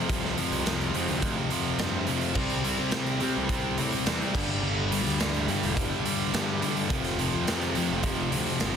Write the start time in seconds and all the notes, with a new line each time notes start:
0.09 C2 F2 C3 F3, kick, closed hi-hat
0.25 snare
0.37 F2 C3 F3, closed hi-hat
0.51 C2, closed hi-hat
0.65 F2 C3 F3, snare, closed hi-hat
0.81 closed hi-hat
0.94 F2 C3 F3, closed hi-hat
1.08 D2, closed hi-hat
1.22 F2 C3 F3, kick, closed hi-hat
1.50 F2 C3 F3, closed hi-hat
1.79 F2 G2 C3 F3, snare, closed hi-hat
2.07 F2 C3 F3, closed hi-hat
2.21 closed hi-hat
2.35 C2 C3 G3 C4, kick, crash
2.50 closed hi-hat
2.64 C3 G3 C4, closed hi-hat
2.79 C3
2.91 C3 G3 C4, snare, closed hi-hat
3.06 closed hi-hat
3.20 C3 G3 C4, closed hi-hat
3.37 C2
3.49 C3 G3 C4, kick, closed hi-hat
3.78 A2 C3 G3 C4, closed hi-hat
3.92 closed hi-hat
4.06 E2 C3 G3 C4, snare, closed hi-hat
4.21 closed hi-hat
4.34 G1 G2 D3 G3, kick, crash
4.63 G2 D3 G3
4.92 G2 D3 G3, closed hi-hat
5.06 D2, closed hi-hat
5.19 G2 D3 G3, snare, closed hi-hat
5.34 closed hi-hat
5.48 G2 D3 G3, closed hi-hat
5.63 E1, closed hi-hat
5.76 G2 D3 G3, kick, closed hi-hat
6.04 G2 D3 G3, closed hi-hat
6.33 G2 D3 G3, snare, closed hi-hat
6.62 G2 D3 G3, closed hi-hat
6.76 closed hi-hat
6.90 F1 F2 C3 F3, kick, closed hi-hat
7.04 snare, closed hi-hat
7.18 F2 C3 F3, closed hi-hat
7.35 F2
7.46 F2 C3 F3, snare, closed hi-hat
7.61 closed hi-hat
7.74 F2 C3 F3, closed hi-hat
7.91 F1
8.03 F2 C3 F3, kick, closed hi-hat
8.31 D2 F2 C3 F3, closed hi-hat
8.46 closed hi-hat
8.60 G1 F2 C3 F3, snare, closed hi-hat